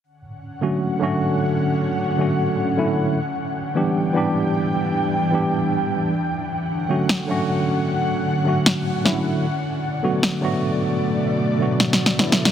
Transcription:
<<
  \new Staff \with { instrumentName = "Ambient pad" } { \time 4/4 \key d \major \tempo 4 = 153 <d cis' fis''>1~ | <d cis' fis''>1 | <e d' g''>1~ | <e d' g''>2.~ <e d' g''>8 <d cis' fis''>8~ |
<d cis' fis''>1~ | <d cis' fis''>1 | <b, a d''>1~ | <b, a d''>1 | }
  \new Staff \with { instrumentName = "Tine electric piano" } { \time 4/4 \key d \major r4. <d fis a cis' fis'>4 <d fis a cis' fis'>4.~ | <d fis a cis' fis'>4. <d fis a cis' fis'>4. <d fis a cis' e'>4 | r4. <e g b d' g'>4 <e g b d' g'>4.~ | <e g b d' g'>4. <e g b d' g'>4. r4 |
r4. <d fis a cis' fis'>4 <d fis a cis' fis'>4.~ | <d fis a cis' fis'>4. <d fis a cis' fis'>4. <d fis a cis' e'>4 | r4. <d fis a b fis'>4 <d fis a b fis'>4.~ | <d fis a b fis'>4. <d fis a b fis'>4. <d fis a b e'>4 | }
  \new DrumStaff \with { instrumentName = "Drums" } \drummode { \time 4/4 r4 r4 r4 r4 | r4 r4 r4 r4 | r4 r4 r4 r4 | r4 r4 r4 r4 |
r4 r4 sn4 r4 | r4 r4 sn4 sn4 | r4 r4 sn4 r4 | r4 r4 \tuplet 3/2 { sn8 sn8 sn8 sn8 sn8 sn8 } | }
>>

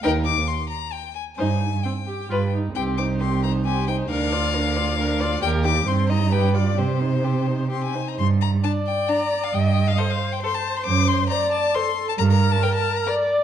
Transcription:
<<
  \new Staff \with { instrumentName = "Violin" } { \time 3/4 \key c \minor \tempo 4 = 134 g''8 d'''8 c'''8 bes''8 g''8 aes''8 | aes''4 g''4. r8 | g''8 d'''8 c'''8 bes''8 aes''8 g''8 | f''2. |
g''8 d'''8 c'''8 bes''8 g''8 d''8 | c''2 c'''16 aes''8 bes''16 | \key g \minor c'''8 bes''8 a''8 g''8 bes''8. f''16 | g''16 g''8 f''16 ees''16 f''8 g''16 c'''16 a''8 c'''16 |
d'''8 c'''8 bes''8 a''8 c'''8. a''16 | bes''16 bes''8 a''16 g''16 a''8 bes''16 r4 | }
  \new Staff \with { instrumentName = "Violin" } { \time 3/4 \key c \minor bes'8 r2 r8 | c''8 r4. b'8 r8 | g'8 c''8 g'8 c''8 g'8 c''8 | bes'8 d''8 bes'8 d''8 bes'8 d''8 |
bes'8 g'8 c''8 ees''8 b'8 d''8 | g'8 c''8 g'8 c''8 g'8 c''8 | \key g \minor r4 d'4 d'4 | r4 a'4 a'4 |
r4 c''4 c''4 | r4 bes'4 bes'4 | }
  \new Staff \with { instrumentName = "Viola" } { \time 3/4 \key c \minor ees'8 r2 r8 | ees'8 r8 c'8 g'8 f'8 ees'8 | c'8 ees'8 c'8 ees'8 c'8 ees'8 | d'8 f'8 d'8 f'8 d'8 f'8 |
g'8 ees'8 c'8 ees'8 g'8 f'8 | c'8 ees'8 c'8 ees'8 c'8 ees'8 | \key g \minor r4 d''2 | ees''4 c''4 c''4~ |
c''4 d''4 a'4 | bes'2 d''4 | }
  \new Staff \with { instrumentName = "Cello" } { \clef bass \time 3/4 \key c \minor ees,4 r2 | g,4 r4 g,4 | c,2. | d,2. |
ees,4 g,2 | c2~ c8 r8 | \key g \minor g,4 r2 | g,4 r2 |
fis,4 r2 | g,4 r2 | }
>>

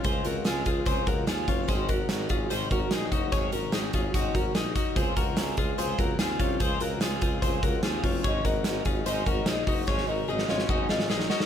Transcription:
<<
  \new Staff \with { instrumentName = "Clean electric guitar" } { \time 4/4 \key des \major \tempo 4 = 146 <aes' c''>8 <ges' bes'>8 <f' aes'>8 <f' aes'>8 <aes' c''>8 <ges' bes'>8 <f' aes'>8 <des' f'>8 | <aes' c''>8 <ges' bes'>4 <f' aes'>8 <aes' c''>8 <ges' bes'>8 <ees' aes'>8 <ees' ges'>8 | <aes' des''>8 <ges' bes'>8 <ees' aes'>8 <f' aes'>8 <ees' ges'>8 <ges' bes'>8 <ees' aes'>8 <ees' ges'>8 | <aes' c''>8 <ges' bes'>4 <f' aes'>8 <aes' c''>8 <ges' bes'>8 <f' aes'>8 <des' f'>8 |
<aes' c''>8 <ges' bes'>8 <f' aes'>8 <f' aes'>8 <aes' c''>8 <ges' bes'>8 <f' aes'>8 <des' f'>8 | <aes' des''>8 <ges' bes'>4 <f' aes'>8 <aes' c''>8 <ges' bes'>8 <ees' aes'>8 <ees' ges'>8 | <aes' des''>8 <ges' bes'>8 <ees' aes'>8 <des' f'>8 <ees' ges'>8 <f' aes'>8 <ees' aes'>8 <ees' ges'>8 | }
  \new Staff \with { instrumentName = "Twelve-string acoustic guitar" } { \time 4/4 \key des \major <des aes c' f'>8 <aes c' f'>8 <des aes c' f'>8 <aes c' f'>8 <des aes c' f'>8 <aes c' f'>8 <des aes c' f'>8 <aes c' f'>8 | <aes, ees ges des' ges'>8 <ges des' ges'>8 <ees ges des' ges'>8 <ges des' ges'>8 <aes, ees ges des' ges'>8 <ges des' ges'>8 <ees ges des' ges'>8 <ges des' ges'>8 | <aes, ees ges des' ges'>8 <ges des' ges'>8 <ees ges des' ges'>8 <ges des' ges'>8 <aes, ees ges des' ges'>8 <ges des' ges'>8 <ees ges des' ges'>8 <ges des' ges'>8 | <des aes c' f'>8 <aes c' f'>8 <des aes c' f'>8 <aes c' f'>8 <des aes c' f'>8 <aes c' f'>8 <des aes c' f'>8 <aes c' f'>8 |
<des aes c' f'>8 <aes c' f'>8 <des aes c' f'>8 <aes c' f'>8 <des aes c' f'>8 <aes c' f'>8 <des aes c' f'>8 <aes c' f'>8 | <aes, des ges des' ees'>8 <ges des' ees'>8 <des ges des' ees'>8 <ges des' ees'>8 <aes, des ges des' ees'>8 <ges des' ees'>8 <des ges des' ees'>8 <ges des' ees'>8 | <aes, des ges des' ees'>8 <ges des' ees'>8 <des ges des' ees'>8 <ges des' ees'>8 <aes, des ges des' ees'>8 <ges des' ees'>8 <des ges des' ees'>8 <ges des' ees'>8 | }
  \new Staff \with { instrumentName = "Tuba" } { \clef bass \time 4/4 \key des \major des,8 des,8 des,8 des,8 des,8 des,8 ees,8 ges,,8 | aes,,8 aes,,8 aes,,8 aes,,8 aes,,8 aes,,8 bes,,8 ges,,8 | aes,,8 aes,,8 aes,,8 aes,,8 aes,,8 aes,,8 bes,,8 r8 | des,8 des,8 des,8 des,8 des,8 des,8 ees,8 c,8 |
des,8 des,8 des,8 des,8 des,8 des,8 ees,8 ges,,8 | aes,,8 aes,,8 aes,,8 aes,,8 aes,,8 aes,,8 bes,,8 ges,,8 | aes,,8 aes,,8 aes,,8 aes,,8 aes,,8 aes,,8 bes,,8 r8 | }
  \new DrumStaff \with { instrumentName = "Drums" } \drummode { \time 4/4 <hh bd>8 hh8 <hh sn>8 <hh bd>8 <hh bd>8 <hh bd>8 <hh sn>8 <hh bd>8 | <hh bd>8 <hh bd>8 <hh sn>8 <hh bd>8 hh8 <hh bd>8 <hh sn>8 <hh bd>8 | <hh bd>8 hh8 <hh sn>8 <hh bd>8 <hh bd>8 <hh bd>8 <hh sn>8 <hh bd>8 | <hh bd>8 <hh bd>8 <hh sn>8 <hh bd>8 hh8 <hh bd>8 <hh sn>8 <hh bd>8 |
<hh bd>8 hh8 <hh sn>8 <hh bd>8 <hh bd>8 <hh bd>8 <hh sn>8 <hho bd>8 | <hh bd>8 <hh bd>8 <hh sn>8 <hh bd>8 hh8 <hh bd>8 <hh sn>8 <hho bd>8 | <bd sn>16 sn8. r16 sn16 sn16 sn16 bd8 sn16 sn16 sn16 sn16 sn16 sn16 | }
>>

